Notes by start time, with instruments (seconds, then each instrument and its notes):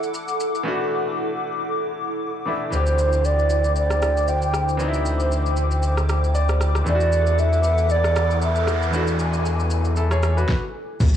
Already playing: grand piano E3 A3 D4 F#4, analog synth pad E4 A4 F#5 D6
0.03 shaker
0.14 shaker
0.28 shaker
0.40 shaker
0.55 shaker
0.63 grand piano E3 A3 D4
0.68 grand piano F#4
2.46 grand piano E3 A3 D4 E4
2.70 analog synth bass D2, grand piano E3 C4 D4, analog synth pad C5 G5, flute C5, shaker
2.75 grand piano G4
2.87 shaker
2.99 shaker
3.13 shaker
3.25 flute D5, shaker
3.39 shaker
3.50 shaker
3.64 shaker
3.76 flute D5, shaker
3.90 cross-stick, shaker
4.02 cross-stick, shaker
4.17 shaker
4.28 flute G5, shaker
4.42 shaker
4.54 cross-stick, shaker
4.69 shaker
4.77 grand piano E3 C4 D4, shaker
4.82 grand piano D#4
4.88 grand piano E4
4.94 shaker
5.06 shaker
5.20 shaker
5.32 shaker
5.46 shaker
5.57 shaker
5.71 shaker
5.83 shaker
5.97 cross-stick, shaker
6.09 cross-stick, shaker
6.24 shaker
6.35 grand piano D5, shaker
6.49 cross-stick, shaker
6.61 cross-stick, shaker
6.75 cross-stick, shaker
6.84 analog synth bass E2, grand piano E3 A3 D4, analog synth pad E4 A4 F#5 D6, flute D5, noise sweep, shaker
6.89 grand piano E4
6.95 grand piano F#4
7.00 shaker
7.12 shaker
7.27 shaker
7.39 flute E5, shaker
7.53 shaker
7.63 shaker
7.78 shaker
7.90 flute D5, shaker
8.04 cross-stick, shaker
8.16 cross-stick, shaker
8.31 shaker
8.42 flute E5, shaker
8.56 shaker
8.67 cross-stick, shaker
8.82 shaker
8.91 grand piano E3 A3 D4, analog synth pad G#5, shaker
8.96 grand piano F#4
9.07 shaker
9.19 shaker
9.33 shaker
9.45 shaker
9.60 shaker
9.70 shaker
9.85 shaker
9.96 grand piano E4 A4, shaker
10.11 grand piano G#4 C#5, cross-stick, shaker
10.23 cross-stick, shaker
10.37 grand piano F#4 B4, shaker
10.49 kick, snare
11.00 log drum bass D2, analog synth pad D3 C4 E4 G4, kick, crash, impact, shaker